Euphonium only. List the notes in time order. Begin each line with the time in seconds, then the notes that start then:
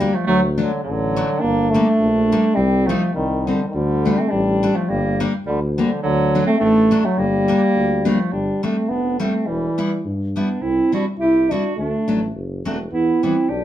Already playing: G3
0.15 F3
0.27 F#3
0.60 D3
0.84 D3
1.41 A#3
1.70 A3
2.55 G3
2.87 F3
3.14 D#3
3.47 D3
3.68 D#3
3.75 D3
4.19 A3
4.31 G3
4.75 F3
4.89 G3
5.46 D3
5.77 D3
6.03 D3
6.47 A3
6.59 A3
7.05 F#3
7.18 G3
8.10 F3
8.33 G3
8.64 A3
8.89 B3
9.20 A3
9.47 E3
10.37 B3
10.62 C4
10.94 D4
11.19 E4
11.50 D4
11.76 A3
12.66 A3
12.92 B3
13.23 C4
13.50 D4